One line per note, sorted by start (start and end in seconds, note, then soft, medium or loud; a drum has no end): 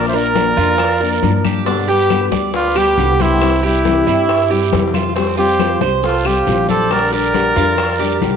0.00 0.51 A#1 medium
0.00 0.12 F3 medium
0.00 0.13 A#3 medium
0.00 0.13 D4 medium
0.00 0.12 F4 medium
0.00 0.12 D5 medium
0.07 0.17 C5 medium
0.07 0.16 E5 medium
0.13 0.35 A#3 soft
0.13 0.35 D4 soft
0.13 0.34 F4 soft
0.13 0.56 A#4 medium
0.13 1.46 A#4 loud
0.13 1.45 D5 medium
0.13 high bongo soft
0.13 high conga soft
0.35 0.56 F3 medium
0.35 0.56 A#3 medium
0.35 0.57 D4 medium
0.35 0.55 F4 medium
0.35 high bongo medium
0.35 high conga medium
0.35 short guiro medium
0.35 maracas medium
0.57 1.19 F2 medium
0.57 0.78 A#3 soft
0.57 0.78 D4 soft
0.57 0.99 F4 medium
0.57 high bongo soft
0.57 high conga soft
0.57 short guiro medium
0.57 maracas soft
0.78 muted nylon-string guitar stroke medium
0.78 high bongo medium
0.78 high conga soft
0.78 long guiro medium
0.78 claves medium
0.78 maracas medium
1.00 1.22 A#3 soft
1.00 1.22 D4 soft
1.00 1.21 F4 soft
1.00 1.43 A#4 medium
1.00 high bongo soft
1.00 high conga soft
1.22 2.26 G2 medium
1.22 1.65 F3 medium
1.22 1.66 A#3 medium
1.22 1.66 D4 medium
1.22 1.67 F4 medium
1.22 high bongo soft
1.22 low bongo medium
1.22 high conga medium
1.22 short guiro medium
1.22 maracas medium
1.44 1.66 G4 medium
1.44 high conga medium
1.44 short guiro medium
1.44 claves medium
1.44 maracas soft
1.65 1.87 B2 medium
1.65 1.87 D3 medium
1.65 1.88 G3 medium
1.65 1.88 B3 medium
1.65 1.88 D4 medium
1.65 1.86 G4 medium
1.65 high bongo medium
1.65 high conga soft
1.65 long guiro medium
1.65 maracas medium
1.88 2.10 G3 soft
1.88 2.09 B3 soft
1.88 2.09 G4 soft
1.88 2.30 G4 medium
1.88 2.29 G4 loud
1.88 2.29 B4 medium
1.88 high bongo soft
1.88 high conga soft
2.10 2.31 B2 medium
2.10 2.31 D3 medium
2.10 2.31 G3 medium
2.10 2.31 B3 medium
2.10 2.30 G4 medium
2.10 high bongo medium
2.10 high conga medium
2.10 short guiro medium
2.10 claves medium
2.10 maracas medium
2.31 2.93 D2 medium
2.31 2.52 G3 soft
2.31 2.53 B3 soft
2.31 2.52 G4 medium
2.31 2.74 D5 medium
2.31 high bongo soft
2.31 high conga loud
2.31 short guiro medium
2.31 maracas soft
2.53 2.79 F4 loud
2.53 2.76 B4 medium
2.53 muted nylon-string guitar stroke medium
2.53 high bongo medium
2.53 high conga soft
2.53 long guiro medium
2.53 maracas medium
2.75 2.96 G3 soft
2.75 2.97 B3 soft
2.75 2.96 G4 medium
2.75 3.18 G4 medium
2.75 3.23 G4 loud
2.75 3.22 B4 medium
2.75 high bongo soft
2.75 high conga soft
2.75 claves medium
2.75 maracas medium
2.96 4.01 C2 medium
2.96 3.40 B2 medium
2.96 3.40 D3 medium
2.96 3.40 G3 medium
2.96 3.41 B3 medium
2.96 3.41 G4 medium
2.96 high bongo soft
2.96 low bongo medium
2.96 high conga soft
2.96 short guiro medium
2.96 maracas medium
3.19 3.64 E4 loud
3.19 3.64 G4 medium
3.19 3.62 C5 medium
3.19 high conga medium
3.19 short guiro medium
3.19 maracas soft
3.40 3.62 C3 medium
3.40 3.62 E3 medium
3.40 3.62 G3 medium
3.40 3.62 C4 medium
3.40 3.61 E4 medium
3.40 high bongo medium
3.40 long guiro medium
3.40 claves medium
3.40 maracas medium
3.62 3.84 G3 soft
3.62 3.84 C4 soft
3.62 3.84 E4 soft
3.62 4.92 E4 medium
3.62 4.05 G4 medium
3.62 4.91 G4 medium
3.62 high bongo soft
3.62 high conga soft
3.84 4.06 C3 medium
3.84 4.06 E3 medium
3.84 4.06 G3 medium
3.84 4.07 C4 medium
3.84 4.05 E4 medium
3.84 high bongo medium
3.84 high conga medium
3.84 short guiro medium
3.84 maracas medium
4.07 4.68 G2 medium
4.07 4.29 G3 soft
4.07 4.28 C4 soft
4.07 4.49 E4 medium
4.07 high bongo soft
4.07 high conga soft
4.07 short guiro medium
4.07 maracas soft
4.29 muted nylon-string guitar stroke medium
4.29 high bongo medium
4.29 high conga soft
4.29 long guiro medium
4.29 claves medium
4.29 maracas medium
4.50 4.72 G3 soft
4.50 4.72 C4 soft
4.50 4.71 E4 medium
4.50 4.93 G4 medium
4.50 high bongo soft
4.50 high conga soft
4.72 5.75 F2 medium
4.72 5.15 C3 medium
4.72 5.15 E3 medium
4.72 5.15 G3 medium
4.72 5.16 C4 medium
4.72 5.16 E4 medium
4.72 high bongo medium
4.72 high conga medium
4.72 short guiro medium
4.72 maracas medium
4.88 high bongo medium
4.94 5.15 F4 medium
4.94 high conga medium
4.94 short guiro medium
4.94 claves medium
4.94 maracas soft
5.02 low bongo medium
5.16 5.37 F3 medium
5.16 5.37 G3 medium
5.16 5.37 C4 medium
5.16 5.38 C4 medium
5.16 5.36 G4 medium
5.16 high bongo medium
5.16 long guiro medium
5.16 maracas medium
5.37 5.59 G3 soft
5.37 5.59 C4 soft
5.37 5.80 F4 medium
5.37 5.58 G4 soft
5.37 5.79 G4 loud
5.37 5.78 C5 medium
5.37 high bongo soft
5.37 high conga soft
5.37 maracas medium
5.59 5.80 F3 medium
5.59 5.81 G3 medium
5.59 5.81 C4 medium
5.59 5.80 G4 medium
5.59 high bongo medium
5.59 high conga medium
5.59 short guiro medium
5.59 claves medium
5.59 maracas medium
5.81 6.43 C2 medium
5.81 6.02 G3 soft
5.81 6.02 C4 soft
5.81 6.02 G4 soft
5.81 6.24 C5 medium
5.81 high bongo soft
5.81 high conga medium
5.81 short guiro medium
5.81 maracas soft
6.03 6.28 F4 medium
6.03 6.27 A4 medium
6.03 muted nylon-string guitar stroke medium
6.03 high bongo medium
6.03 high conga soft
6.03 long guiro medium
6.03 maracas medium
6.24 6.46 G3 soft
6.24 6.46 C4 soft
6.24 6.67 F4 medium
6.24 6.46 G4 soft
6.24 6.69 G4 medium
6.24 6.68 C5 medium
6.24 high bongo soft
6.24 high conga soft
6.24 claves medium
6.24 maracas medium
6.46 7.50 A#1 medium
6.46 6.89 F3 medium
6.46 6.89 G3 medium
6.46 6.90 C4 medium
6.46 6.91 G4 medium
6.46 high bongo soft
6.46 low bongo medium
6.46 high conga soft
6.46 short guiro medium
6.46 maracas medium
6.68 6.93 A4 medium
6.68 6.92 C5 medium
6.68 7.11 D5 medium
6.68 high conga medium
6.68 short guiro medium
6.68 maracas soft
6.90 7.11 D3 medium
6.90 7.12 G3 medium
6.90 7.12 D4 medium
6.90 7.10 G4 medium
6.90 7.13 A#4 medium
6.90 7.12 D5 medium
6.90 high bongo medium
6.90 high conga soft
6.90 long guiro medium
6.90 claves medium
6.90 maracas medium
7.12 7.33 G3 soft
7.12 7.34 D4 soft
7.12 7.33 G4 medium
7.12 7.55 G4 medium
7.12 8.37 A#4 loud
7.12 8.37 D5 medium
7.12 high bongo soft
7.12 high conga soft
7.12 maracas medium
7.33 7.55 D3 medium
7.33 7.55 G3 medium
7.33 7.55 D4 medium
7.33 7.54 G4 medium
7.33 high bongo medium
7.33 high conga medium
7.33 short guiro medium
7.33 maracas medium
7.56 8.18 F2 medium
7.56 7.77 G3 soft
7.56 7.77 D4 medium
7.56 7.98 F4 medium
7.56 7.77 G4 medium
7.56 high bongo soft
7.56 high conga soft
7.56 short guiro medium
7.56 maracas soft
7.77 muted nylon-string guitar stroke medium
7.77 high bongo medium
7.77 high conga soft
7.77 long guiro medium
7.77 claves medium
7.77 maracas medium
7.99 8.20 G3 soft
7.99 8.21 D4 soft
7.99 8.20 G4 soft
7.99 8.37 G4 medium
7.99 high bongo soft
7.99 high conga soft
7.99 maracas medium
8.20 8.37 C2 medium
8.20 8.37 D3 medium
8.20 8.37 G3 medium
8.20 8.37 D4 medium
8.20 8.37 G4 medium
8.20 high bongo soft
8.20 low bongo medium
8.20 high conga medium
8.20 short guiro medium
8.20 maracas medium